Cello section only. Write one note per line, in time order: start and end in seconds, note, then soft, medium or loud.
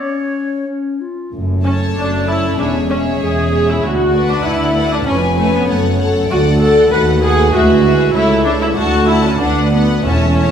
1.33 1.89 F#2 medium
1.97 2.52 F#2 medium
2.59 3.14 E2 medium
3.21 3.76 E2 medium
3.84 4.39 D2 medium
4.46 5.00 D2 medium
5.08 5.62 F2 medium
5.69 6.23 F#2 medium
6.31 6.85 D2 medium
6.92 7.46 D#2 medium
7.54 8.08 D2 medium
8.15 8.70 C#2 medium
8.78 9.34 D2 medium
9.42 9.99 D2 medium
10.07 10.51 E2 medium